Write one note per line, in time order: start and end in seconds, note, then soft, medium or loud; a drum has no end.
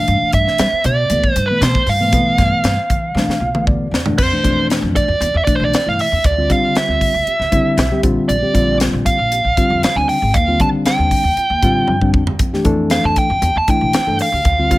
0.00 0.65 B2 medium
0.00 0.66 E3 medium
0.00 0.66 A3 medium
0.00 0.66 D4 medium
0.00 0.30 F5 loud
0.08 0.20 G2 medium
0.08 closed hi-hat medium
0.22 muted upright bass stroke soft
0.33 0.45 G2 medium
0.33 0.85 E5 medium
0.33 kick medium
0.33 closed hi-hat medium
0.48 snare soft
0.58 0.71 G3 medium
0.58 snare loud
0.58 closed hi-hat medium
0.73 muted upright bass stroke soft
0.84 1.08 B2 medium
0.84 0.91 A3 soft
0.84 0.92 D4 soft
0.84 1.33 D5 medium
0.84 closed hi-hat medium
1.10 1.22 D2 medium
1.10 1.32 B2 medium
1.10 1.32 E3 medium
1.10 1.32 A3 medium
1.10 1.32 B3 medium
1.10 closed hi-hat medium
1.24 kick medium
1.33 1.48 G2 medium
1.33 1.47 C5 medium
1.33 closed hi-hat medium
1.38 1.44 D4 soft
1.46 1.62 B4 medium
1.50 1.81 B2 medium
1.50 1.81 E3 medium
1.50 1.81 A3 medium
1.50 1.81 B3 medium
1.61 1.74 B2 medium
1.61 1.89 C5 medium
1.61 snare loud
1.61 closed hi-hat medium
1.75 muted upright bass stroke soft
1.75 kick medium
1.86 2.13 G2 medium
1.86 1.94 A3 soft
1.86 1.95 E4 soft
1.86 3.64 F5 medium
1.86 open hi-hat medium
2.00 2.11 B2 medium
2.00 2.11 E3 medium
2.00 2.11 A3 medium
2.00 2.11 B3 medium
2.12 2.24 B2 loud
2.12 2.76 B2 medium
2.12 2.76 E3 medium
2.12 2.76 A3 medium
2.12 2.76 B3 loud
2.12 kick loud
2.12 closed hi-hat medium
2.25 muted upright bass stroke soft
2.38 2.51 G2 medium
2.38 kick medium
2.38 snare soft
2.38 closed hi-hat medium
2.64 2.76 G2 medium
2.64 snare loud
2.64 closed hi-hat medium
2.90 3.14 E3 medium
2.90 2.97 A3 soft
2.90 2.97 B3 soft
2.90 kick medium
2.90 closed hi-hat medium
3.15 3.37 B2 medium
3.15 3.37 E3 medium
3.15 3.27 G3 medium
3.15 3.37 A3 medium
3.15 3.37 D4 medium
3.15 snare medium
3.27 muted upright bass stroke soft
3.27 snare medium
3.40 3.64 B1 medium
3.40 3.48 A3 soft
3.40 3.48 F4 soft
3.40 3.65 F5 medium
3.55 3.86 B2 medium
3.55 3.86 E3 medium
3.55 3.86 A3 medium
3.55 3.86 B3 medium
3.55 mid tom medium
3.67 3.90 D2 medium
3.67 4.15 D5 medium
3.67 kick medium
3.91 4.15 E2 medium
3.91 3.99 A3 soft
3.91 4.00 D4 soft
3.91 snare medium
4.06 4.16 B2 medium
4.06 4.16 E3 medium
4.06 4.16 A3 medium
4.06 4.16 D4 medium
4.06 floor tom medium
4.18 4.31 F2 medium
4.18 4.66 C5 medium
4.18 kick loud
4.18 crash medium
4.32 4.42 B2 medium
4.32 4.42 E3 medium
4.32 4.42 A3 medium
4.32 4.42 D4 medium
4.43 4.80 F2 medium
4.43 5.06 B2 medium
4.43 5.07 E3 medium
4.43 5.07 A3 medium
4.43 5.07 D4 medium
4.43 kick medium
4.43 closed hi-hat medium
4.70 snare medium
4.70 closed hi-hat medium
4.82 4.94 F2 medium
4.96 5.34 D5 medium
4.96 kick medium
4.96 closed hi-hat medium
5.08 5.20 F2 medium
5.21 5.33 E2 medium
5.21 5.28 A3 soft
5.21 5.28 D4 soft
5.21 closed hi-hat medium
5.34 5.46 E2 medium
5.34 5.44 E5 medium
5.45 5.78 B2 medium
5.45 5.78 E3 medium
5.45 5.78 A3 medium
5.45 5.78 D4 loud
5.45 5.54 D5 medium
5.45 muted upright bass stroke soft
5.45 kick medium
5.45 closed hi-hat medium
5.55 5.64 C5 medium
5.60 5.71 B1 medium
5.64 5.73 D5 medium
5.73 5.89 D5 medium
5.73 muted upright bass stroke soft
5.73 snare loud
5.73 closed hi-hat medium
5.86 5.97 G2 medium
5.86 6.06 B2 medium
5.86 6.07 E3 medium
5.86 6.07 A3 medium
5.86 6.07 E4 medium
5.86 6.00 F5 medium
5.99 6.26 E5 loud
5.99 open hi-hat medium
6.12 6.23 E2 medium
6.12 6.18 A3 soft
6.12 6.19 D4 soft
6.24 6.48 D2 loud
6.24 6.52 D5 medium
6.24 kick loud
6.24 closed hi-hat medium
6.38 6.47 D3 medium
6.38 6.47 G3 medium
6.38 6.48 C4 medium
6.38 6.48 F4 medium
6.49 7.12 D3 medium
6.49 6.62 D3 medium
6.49 7.12 G3 medium
6.49 7.12 C4 medium
6.49 7.12 F4 medium
6.49 6.77 F5 medium
6.49 kick medium
6.49 closed hi-hat medium
6.75 8.01 E5 medium
6.75 muted upright bass stroke soft
6.75 snare loud
6.75 closed hi-hat medium
6.88 7.00 D2 medium
7.01 kick medium
7.01 open hi-hat medium
7.14 7.25 D2 medium
7.26 7.33 C4 soft
7.26 7.33 G4 soft
7.26 muted upright bass stroke soft
7.26 closed hi-hat medium
7.39 7.51 D2 medium
7.39 snare soft
7.52 7.83 D3 loud
7.52 7.76 D3 medium
7.52 7.84 G3 loud
7.52 7.84 C4 loud
7.52 7.84 E4 loud
7.52 kick medium
7.52 closed hi-hat medium
7.77 7.90 B1 medium
7.77 snare loud
7.77 closed hi-hat medium
7.91 8.02 D3 medium
7.91 8.02 G3 medium
7.91 8.03 C4 medium
7.91 8.04 G4 medium
8.03 8.16 A#1 medium
8.03 8.35 D3 medium
8.03 8.35 G3 medium
8.03 8.35 C4 medium
8.03 8.35 F4 medium
8.03 kick loud
8.03 closed hi-hat medium
8.29 8.41 A#1 medium
8.29 8.77 D5 medium
8.29 closed hi-hat medium
8.42 8.52 D3 medium
8.42 8.52 G3 medium
8.42 8.53 C4 medium
8.42 8.53 G4 medium
8.53 8.90 A#1 medium
8.53 9.17 D3 medium
8.53 9.17 G3 medium
8.53 9.17 C4 medium
8.53 9.17 F4 medium
8.53 kick medium
8.53 closed hi-hat medium
8.80 snare loud
8.80 closed hi-hat medium
8.93 9.05 A#1 medium
9.06 9.82 F5 medium
9.06 kick medium
9.06 closed hi-hat medium
9.19 9.43 A#1 medium
9.31 9.38 C4 soft
9.31 9.38 G4 soft
9.31 closed hi-hat medium
9.44 9.56 A#1 medium
9.57 9.88 D3 medium
9.57 9.89 G3 medium
9.57 9.89 C4 medium
9.57 9.89 F4 medium
9.57 muted upright bass stroke soft
9.57 kick medium
9.57 closed hi-hat medium
9.70 9.82 F2 medium
9.83 9.97 F5 medium
9.83 muted upright bass stroke soft
9.83 snare loud
9.83 closed hi-hat medium
9.95 10.07 D2 medium
9.95 10.17 D3 medium
9.95 10.17 G3 medium
9.95 10.17 C4 medium
9.95 10.17 D4 medium
9.95 10.09 G#5 medium
10.09 10.35 G5 medium
10.09 open hi-hat medium
10.22 10.33 G#1 medium
10.22 10.28 C4 soft
10.22 10.28 G#4 soft
10.34 10.58 D#2 medium
10.34 10.61 F5 medium
10.34 kick loud
10.34 closed hi-hat medium
10.48 10.58 D3 medium
10.48 10.58 G3 medium
10.48 10.58 C4 medium
10.48 10.58 F4 medium
10.60 11.23 D3 medium
10.60 10.72 D#3 medium
10.60 11.23 G3 medium
10.60 11.23 C4 medium
10.60 11.23 D4 loud
10.60 10.68 A5 medium
10.60 kick medium
10.60 closed hi-hat medium
10.85 12.10 G5 medium
10.85 muted upright bass stroke soft
10.85 snare medium
10.85 closed hi-hat medium
10.99 11.10 D#2 medium
11.11 kick medium
11.11 open hi-hat medium
11.24 11.35 D#2 medium
11.36 11.44 C4 soft
11.36 11.44 F4 soft
11.36 muted upright bass stroke soft
11.36 closed hi-hat medium
11.50 11.61 D#2 medium
11.62 11.86 A2 medium
11.62 11.94 D3 loud
11.62 11.94 G3 loud
11.62 11.94 C4 medium
11.62 11.95 F4 loud
11.62 kick medium
11.62 closed hi-hat medium
11.87 12.11 G2 medium
11.87 high tom medium
12.01 12.22 D3 medium
12.01 12.22 G3 medium
12.01 12.22 C4 medium
12.01 12.22 D4 medium
12.01 kick medium
12.14 12.37 F2 medium
12.14 kick medium
12.27 12.33 C4 soft
12.27 12.33 G4 soft
12.27 floor tom medium
12.39 12.52 F2 medium
12.39 kick loud
12.39 closed hi-hat medium
12.53 12.63 E3 medium
12.53 12.63 A3 medium
12.53 12.63 D4 medium
12.53 12.63 G4 medium
12.53 snare soft
12.65 13.01 F2 medium
12.65 13.28 E3 loud
12.65 13.28 A3 medium
12.65 13.28 D4 loud
12.65 13.28 A4 loud
12.65 kick medium
12.65 closed hi-hat medium
12.90 13.05 F5 medium
12.90 snare loud
12.90 closed hi-hat medium
13.04 13.15 F2 medium
13.04 13.17 A5 medium
13.16 13.57 G5 loud
13.16 kick medium
13.16 closed hi-hat medium
13.30 13.41 F2 medium
13.42 13.54 E2 loud
13.42 13.49 D4 soft
13.42 13.49 G4 soft
13.42 closed hi-hat medium
13.56 13.67 E2 medium
13.56 13.69 A5 medium
13.68 13.99 E3 medium
13.68 14.00 A3 medium
13.68 14.00 D4 medium
13.68 14.00 E4 loud
13.68 14.17 G5 medium
13.68 kick medium
13.68 closed hi-hat medium
13.81 13.92 B1 medium
13.93 muted upright bass stroke soft
13.93 snare loud
13.93 closed hi-hat medium
14.06 14.18 G2 medium
14.06 14.27 E3 medium
14.06 14.27 A3 medium
14.06 14.28 D4 medium
14.06 14.28 A4 medium
14.19 14.78 F5 medium
14.19 open hi-hat medium
14.32 14.44 D2 medium
14.32 14.39 G4 soft
14.45 14.68 D2 medium
14.45 kick loud
14.45 closed hi-hat medium
14.59 14.68 D3 medium
14.59 14.68 G3 medium
14.59 14.69 C4 medium
14.59 14.69 F4 medium
14.70 14.78 D3 medium
14.70 14.78 G3 medium
14.70 14.78 C4 medium
14.70 14.78 F4 loud
14.70 kick medium
14.70 closed hi-hat medium